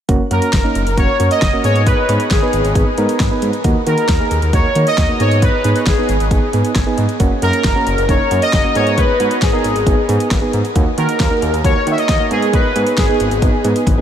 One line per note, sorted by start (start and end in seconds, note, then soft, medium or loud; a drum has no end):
0.09 0.18 F#1 loud
0.09 0.21 A#3 medium
0.09 0.21 C#4 medium
0.09 0.21 F#4 medium
0.09 kick loud
0.09 closed hi-hat medium
0.31 0.40 F#2 loud
0.31 0.50 A#3 medium
0.31 0.50 C#4 medium
0.31 0.50 F#4 medium
0.31 1.00 A#4 medium
0.31 closed hi-hat medium
0.42 closed hi-hat medium
0.53 0.62 F#1 loud
0.53 kick loud
0.53 snare loud
0.53 closed hi-hat medium
0.64 0.83 A#3 medium
0.64 0.83 C#4 medium
0.64 0.83 D#4 medium
0.75 0.84 F#1 loud
0.75 closed hi-hat medium
0.87 0.96 F#1 medium
0.87 closed hi-hat soft
0.97 1.07 F#1 loud
0.97 1.10 A#3 medium
0.97 1.10 C#4 medium
0.97 1.10 F#4 medium
0.97 1.29 C#5 loud
0.97 kick loud
0.97 closed hi-hat medium
1.19 1.29 F#2 loud
1.19 1.39 A#3 medium
1.19 1.39 C#4 medium
1.19 1.39 F#4 medium
1.19 closed hi-hat medium
1.31 1.62 D#5 loud
1.31 closed hi-hat medium
1.42 1.51 F#1 loud
1.42 kick loud
1.42 snare loud
1.42 closed hi-hat medium
1.53 1.64 A#3 medium
1.53 1.64 C#4 medium
1.53 1.64 F#4 medium
1.64 1.91 G#2 loud
1.64 2.00 B3 medium
1.64 2.00 D#4 medium
1.64 2.00 G#4 medium
1.64 1.87 C#5 loud
1.64 closed hi-hat medium
1.76 closed hi-hat soft
1.86 2.32 B4 loud
1.86 kick loud
1.86 closed hi-hat medium
2.09 2.18 G#2 loud
2.09 2.28 B3 medium
2.09 2.28 D#4 medium
2.09 2.28 G#4 medium
2.09 closed hi-hat medium
2.20 closed hi-hat medium
2.31 2.40 G#1 medium
2.31 2.94 G#4 medium
2.31 kick loud
2.31 snare loud
2.31 closed hi-hat medium
2.42 2.61 B3 medium
2.42 2.61 D#4 medium
2.42 2.61 B4 medium
2.53 2.62 G#1 medium
2.53 closed hi-hat medium
2.64 2.73 G#1 medium
2.64 closed hi-hat soft
2.75 2.84 G#1 loud
2.75 2.88 B3 medium
2.75 2.88 D#4 medium
2.75 2.88 G#4 medium
2.75 kick loud
2.75 closed hi-hat medium
2.98 3.07 G#2 loud
2.98 3.17 B3 medium
2.98 3.17 D#4 medium
2.98 3.17 A#4 medium
2.98 closed hi-hat medium
3.09 closed hi-hat medium
3.20 3.29 G#1 loud
3.20 kick loud
3.20 snare loud
3.20 closed hi-hat medium
3.31 3.50 B3 medium
3.31 3.50 D#4 medium
3.31 3.50 B4 loud
3.42 3.51 G#2 medium
3.42 closed hi-hat medium
3.53 closed hi-hat soft
3.64 3.73 D#2 loud
3.64 3.77 A#3 medium
3.64 3.77 D#4 medium
3.64 3.77 F#4 loud
3.64 kick loud
3.64 closed hi-hat medium
3.86 3.96 D#3 loud
3.86 4.06 A#3 medium
3.86 4.06 D#4 medium
3.86 4.06 F#4 medium
3.86 4.55 A#4 medium
3.86 closed hi-hat medium
3.98 closed hi-hat medium
4.09 4.18 D#2 loud
4.09 kick loud
4.09 snare loud
4.09 closed hi-hat medium
4.20 4.39 A#3 medium
4.20 4.39 D#4 medium
4.20 4.39 G#4 medium
4.31 4.40 D#2 loud
4.31 closed hi-hat medium
4.42 4.51 D#2 loud
4.42 closed hi-hat soft
4.53 4.62 D#2 loud
4.53 4.66 A#3 medium
4.53 4.66 D#4 medium
4.53 4.66 F#4 medium
4.53 4.88 C#5 loud
4.53 kick loud
4.53 closed hi-hat medium
4.75 4.84 D#3 loud
4.75 4.95 A#3 medium
4.75 4.94 D#4 medium
4.75 4.95 F#4 medium
4.75 closed hi-hat medium
4.87 5.21 D#5 loud
4.87 closed hi-hat medium
4.98 5.07 D#2 loud
4.98 kick loud
4.98 snare loud
4.98 closed hi-hat medium
5.09 5.20 A#3 medium
5.09 5.19 D#4 medium
5.09 5.20 F#4 medium
5.20 5.47 G#2 loud
5.20 5.56 B3 medium
5.20 5.56 D#4 medium
5.20 5.56 G#4 medium
5.20 5.43 C#5 loud
5.20 closed hi-hat medium
5.31 closed hi-hat soft
5.42 5.88 B4 loud
5.42 kick loud
5.42 closed hi-hat medium
5.64 5.73 G#2 loud
5.64 5.83 B3 medium
5.64 5.83 D#4 medium
5.64 5.83 G#4 medium
5.64 closed hi-hat medium
5.76 closed hi-hat medium
5.86 5.96 G#1 loud
5.86 6.50 G#4 medium
5.86 kick loud
5.86 snare loud
5.86 closed hi-hat medium
5.98 6.17 B3 medium
5.98 6.17 D#4 medium
5.98 6.17 G#4 medium
6.09 6.18 G#1 loud
6.09 closed hi-hat medium
6.20 6.29 G#1 loud
6.20 closed hi-hat soft
6.31 6.40 G#1 loud
6.31 6.44 B3 medium
6.31 6.44 D#4 medium
6.31 6.44 G#4 medium
6.31 kick loud
6.31 closed hi-hat medium
6.53 6.62 G#2 loud
6.53 6.72 B3 medium
6.53 6.72 D#4 medium
6.53 6.72 G#4 medium
6.53 closed hi-hat medium
6.65 closed hi-hat medium
6.75 6.84 G#1 loud
6.75 6.96 G#5 medium
6.75 kick loud
6.75 snare loud
6.75 closed hi-hat medium
6.87 7.06 B3 medium
6.87 7.06 D#4 medium
6.87 7.06 G#4 medium
6.98 7.07 G#2 medium
6.98 7.18 D#5 medium
6.98 closed hi-hat medium
7.09 closed hi-hat soft
7.20 7.29 F#1 loud
7.20 7.32 A#3 medium
7.20 7.33 C#4 medium
7.20 7.32 F#4 medium
7.20 kick loud
7.20 closed hi-hat medium
7.42 7.51 F#2 loud
7.42 7.61 A#3 medium
7.42 7.61 C#4 medium
7.42 7.61 F#4 medium
7.42 8.11 A#4 loud
7.42 closed hi-hat medium
7.53 closed hi-hat medium
7.64 7.73 F#1 loud
7.64 kick loud
7.64 snare loud
7.64 closed hi-hat medium
7.75 7.94 A#3 medium
7.75 7.94 C#4 medium
7.75 7.94 F#4 medium
7.87 7.96 F#1 loud
7.87 closed hi-hat medium
7.98 8.07 F#1 medium
7.98 closed hi-hat soft
8.09 8.18 F#1 loud
8.09 8.21 A#3 medium
8.09 8.21 C#4 medium
8.09 8.21 D#4 medium
8.09 8.43 C#5 loud
8.09 kick loud
8.09 closed hi-hat medium
8.31 8.40 F#2 loud
8.31 8.50 A#3 medium
8.31 8.50 C#4 medium
8.31 8.50 F#4 medium
8.31 closed hi-hat medium
8.42 8.76 D#5 loud
8.42 closed hi-hat medium
8.53 8.62 F#1 loud
8.53 kick loud
8.53 snare loud
8.53 closed hi-hat medium
8.64 8.75 A#3 medium
8.64 8.76 C#4 medium
8.64 8.75 F#4 medium
8.75 9.03 G#2 loud
8.75 9.11 B3 medium
8.75 9.11 D#4 medium
8.75 9.11 G#4 medium
8.75 8.98 C#5 loud
8.75 closed hi-hat medium
8.87 closed hi-hat soft
8.98 9.44 B4 loud
8.98 kick loud
8.98 closed hi-hat medium
9.20 9.29 G#2 medium
9.20 9.39 B3 medium
9.20 9.39 D#4 medium
9.20 9.39 F#4 medium
9.20 closed hi-hat medium
9.31 closed hi-hat medium
9.42 9.51 G#1 loud
9.42 10.05 G#4 medium
9.42 kick loud
9.42 snare loud
9.42 closed hi-hat medium
9.53 9.72 B3 medium
9.53 9.72 D#4 medium
9.53 9.72 A#4 medium
9.64 9.73 G#1 medium
9.64 closed hi-hat medium
9.76 9.85 G#1 medium
9.76 closed hi-hat soft
9.86 9.96 G#1 loud
9.86 9.99 B3 medium
9.86 9.99 D#4 medium
9.86 9.99 G#4 medium
9.86 kick loud
9.86 closed hi-hat medium
10.09 10.18 G#2 loud
10.09 10.28 B3 medium
10.09 10.28 D#4 medium
10.09 10.28 G#4 loud
10.09 closed hi-hat medium
10.20 closed hi-hat medium
10.31 10.40 G#1 loud
10.31 kick loud
10.31 snare loud
10.31 closed hi-hat medium
10.42 10.61 B3 medium
10.42 10.61 D#4 medium
10.42 10.61 G#4 loud
10.53 10.62 G#2 medium
10.53 closed hi-hat medium
10.65 closed hi-hat soft
10.75 10.85 D#2 loud
10.75 10.88 A#3 medium
10.75 10.88 D#4 medium
10.75 10.88 F#4 loud
10.75 kick loud
10.75 closed hi-hat medium
10.98 11.07 D#3 loud
10.98 11.17 A#3 medium
10.98 11.17 D#4 medium
10.98 11.17 F#4 medium
10.98 11.60 A#4 medium
10.98 closed hi-hat medium
11.09 closed hi-hat medium
11.20 11.29 D#2 loud
11.20 kick loud
11.20 snare loud
11.20 closed hi-hat medium
11.31 11.50 A#3 medium
11.31 11.50 D#4 medium
11.31 11.50 F#4 medium
11.42 11.51 D#2 loud
11.42 closed hi-hat medium
11.53 11.62 D#2 loud
11.53 closed hi-hat soft
11.64 11.73 D#2 loud
11.64 11.77 A#3 medium
11.64 11.77 D#4 medium
11.64 11.77 F#4 medium
11.64 11.91 C#5 loud
11.64 kick loud
11.64 closed hi-hat medium
11.87 11.96 D#3 loud
11.87 12.06 A#3 medium
11.87 12.06 D#4 medium
11.87 12.06 F#4 medium
11.87 closed hi-hat medium
11.91 11.98 E5 medium
11.98 12.29 D#5 loud
11.98 closed hi-hat medium
12.09 12.18 D#2 loud
12.09 kick loud
12.09 snare loud
12.09 closed hi-hat medium
12.20 12.31 A#3 medium
12.20 12.30 D#4 medium
12.20 12.31 F#4 medium
12.31 12.58 G#2 loud
12.31 12.67 B3 medium
12.31 12.67 D#4 medium
12.31 12.67 G#4 medium
12.31 12.54 G#4 medium
12.31 closed hi-hat medium
12.42 closed hi-hat soft
12.53 12.99 B4 loud
12.53 kick loud
12.53 closed hi-hat medium
12.76 12.85 G#2 loud
12.76 12.95 B3 medium
12.76 12.94 D#4 medium
12.76 12.95 G#4 medium
12.76 closed hi-hat medium
12.87 closed hi-hat medium
12.98 13.07 G#1 loud
12.98 13.61 G#4 medium
12.98 kick loud
12.98 snare loud
12.98 closed hi-hat medium
13.09 13.28 B3 medium
13.09 13.28 D#4 medium
13.09 13.28 G#4 medium
13.20 13.29 G#1 loud
13.20 closed hi-hat medium
13.31 13.40 G#1 loud
13.31 closed hi-hat soft
13.42 13.51 G#1 loud
13.42 13.55 B3 medium
13.42 13.55 D#4 medium
13.42 13.55 G#4 medium
13.42 kick loud
13.42 closed hi-hat medium
13.64 13.73 G#2 loud
13.64 13.83 B3 medium
13.64 13.83 D#4 medium
13.64 13.84 G#4 medium
13.64 closed hi-hat medium
13.76 closed hi-hat medium
13.87 13.96 G#1 loud
13.87 kick loud
13.87 closed hi-hat medium
13.87 high tom medium
13.98 14.01 G#4 medium